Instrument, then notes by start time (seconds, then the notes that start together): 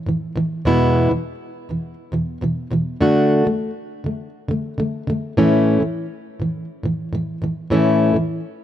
steel-string acoustic guitar
0.06 A2 E3
0.36 A2 E3
0.65 E2 B2 E3 G#3 B3 E4
1.10 E2 B2 E3
1.69 E2 B2 E3
2.12 E2 B2 E3
2.41 E2 B2 E3
2.71 E2 B2 E3
3.01 D3 A3 D4 F#4
3.45 D3 A3
4.04 D3 A3
4.48 D3 A3
4.78 D3 A3
5.07 D3 A3
5.37 A2 E3 A3 C#4 E4
5.80 A2 E3
6.40 A2 E3
6.83 A2 E3
7.13 A2 E3
7.42 A2 E3
7.70 A2 E3 A3 C#4 E4
8.14 A2 E3